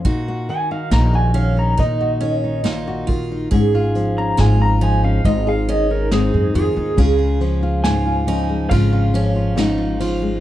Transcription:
<<
  \new Staff \with { instrumentName = "Clean electric guitar" } { \time 4/4 \key des \major \tempo 4 = 69 r8 aes''16 f''16 bes''16 aes''16 f''16 bes''16 ees''4 r4 | r8. bes''16 aes''16 bes''16 aes''16 f''16 ees''16 f''16 ees''16 bes'16 aes'8 aes'8 | r4 aes''4 f''2 | }
  \new Staff \with { instrumentName = "Steel-string acoustic guitar" } { \time 4/4 \key des \major ges'4 ees'8 des'8 ees'8 des'8 ees'8 f'8 | aes'4 f'8 ees'8 f'8 des'8 ees'8 f'8 | aes'4 f'8 ees'8 f'8 des'8 ees'8 f'8 | }
  \new Staff \with { instrumentName = "Nylon-string guitar" } { \time 4/4 \key des \major << { ees'16 ges'8 ees'16 bes16 ges'8 ees'16 ees'16 ges'8 ees'16 bes16 ges'8 ees'16 | des'16 f'8 des'16 aes16 f'8 des'16 ees'16 aes'8 ees'16 c'16 ees'8 ees'16 | <aes des' f'>16 f'16 des'16 f'16 des'16 f'16 des'16 aes16 <aes des' f'>16 f'16 des'16 f'16 des'16 f'16 des'16 aes16 | } \\ { bes,8 ees8 bes,8 ees8 bes,8 ees8 bes,8 ees8 | aes,8 f8 aes,8 f8 aes,8 ees8 aes,8 ees8 | des8 f8 aes,8 f8 des8 f8 aes,8 f8 | } >> }
  \new Staff \with { instrumentName = "Upright bass" } { \clef bass \time 4/4 \key des \major bes,,4 bes,,4 bes,,2 | aes,,4 aes,,4 aes,,4~ aes,,16 ges,16 f,16 ees,16 | des,2 aes,,2 | }
  \new DrumStaff \with { instrumentName = "Drums" } \drummode { \time 4/4 <hh bd>8 hh8 <hh sn>8 hh8 <hh bd>8 hh8 <hh sn>8 <hh bd>8 | <hh bd>8 hh8 <hh sn>8 hh8 <hh bd>8 hh8 <hh sn>8 hh8 | <bd cymr>8 cymr8 <cymr sn>8 cymr8 <bd cymr>8 cymr8 <cymr sn>8 cymr8 | }
>>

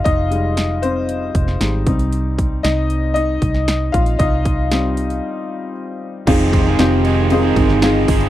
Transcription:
<<
  \new Staff \with { instrumentName = "Upright piano" } { \time 4/4 \key f \minor \tempo 4 = 116 <ees' ees''>4. <c' c''>2 r8 | r4 <ees' ees''>4 <ees' ees''>4. <f' f''>8 | <ees' ees''>2. r4 | <c' ees' f' aes'>4 <c' ees' f' g'>4 <c' ees' f' aes'>4 <c' ees' f' aes'>4 | }
  \new Staff \with { instrumentName = "Upright piano" } { \clef bass \time 4/4 \key f \minor r8 <g aes ees'>8 r2 <g aes ees'>8 <g c' ees'>8~ | <g c' ees'>4 r2. | r4 <g c' ees'>8 r2 r8 | c4. r2 r8 | }
  \new Staff \with { instrumentName = "French horn section" } { \time 4/4 \key f \minor r1 | r1 | r1 | <ees ees'>1 | }
  \new Staff \with { instrumentName = "Overdriven electric guitar" } { \clef bass \time 4/4 \key f \minor r1 | r1 | r1 | <f, c ees aes c' aes'>8. <ees aes c' aes'>8. <ees aes c' aes'>8. <ees aes c' aes'>8. <ees aes c' aes'>8 <ees aes c' aes'>8 | }
  \new Staff \with { instrumentName = "Fingered electric bass" } { \clef bass \time 4/4 \key f \minor f,,2~ f,,8 f,,8 aes,,8 c,8~ | c,4 c,4. c,4 bes,,8 | c,2 r2 | f,,4 f,,4. g,,4 g,,8 | }
  \new DrumStaff \with { instrumentName = "Drums" } \drummode { \time 4/4 <hh bd>8 hh8 <hh sn>8 hh8 hh8 <hh bd>16 sn16 <hh sn>8 <hh bd>16 hh16 | hh8 <hh bd>8 <hh sn>8 hh8 hh8 <hh bd>16 sn16 <hh sn>8 <hh bd>16 hh16 | <hh bd>8 <hh bd>8 <hh sn>8 hh16 hh16 r4 r4 | <cymc bd cymr>8 <bd cymr>8 <cymr sn>8 cymr8 cymr8 <bd cymr>16 sn16 <cymr sn>8 <hho bd cymr>16 cymr16 | }
>>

